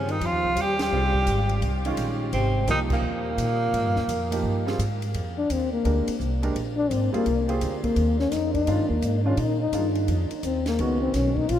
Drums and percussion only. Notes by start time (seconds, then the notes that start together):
0.09 ride
0.21 ride
0.57 hi-hat pedal, ride
0.79 snare, ride
1.14 kick
1.27 hi-hat pedal, ride
1.49 ride
1.62 ride
1.85 ride
1.97 hi-hat pedal, ride
2.33 ride
2.67 hi-hat pedal, ride
2.90 kick, crash
3.38 hi-hat pedal, ride
3.74 ride
3.96 snare
4.09 hi-hat pedal, ride
4.32 ride
4.67 snare
4.79 hi-hat pedal, ride
5.02 ride
5.14 ride
5.50 hi-hat pedal, ride
5.85 ride
6.08 ride
6.20 hi-hat pedal
6.43 ride
6.56 ride
6.91 hi-hat pedal, ride
7.14 ride
7.26 ride
7.49 ride
7.61 hi-hat pedal, ride
7.84 kick, ride
7.96 ride
8.19 snare
8.32 snare, hi-hat pedal, ride
8.54 kick, ride
8.67 ride
9.02 hi-hat pedal, ride
9.37 ride
9.73 hi-hat pedal, ride
9.95 ride
10.08 ride
10.31 ride
10.43 hi-hat pedal, ride
10.66 snare, ride
10.79 ride
11.14 snare, hi-hat pedal, ride
11.37 kick
11.49 ride